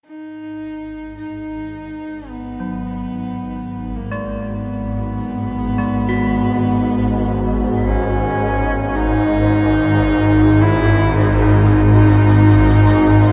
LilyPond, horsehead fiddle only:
\new Staff \with { instrumentName = "Horsehead fiddle" } { \time 4/4 \key gis \minor \tempo 4 = 54 dis'4 dis'4 b4. ais8 | b2. cis'4 | dis'4. e'8 dis'2 | }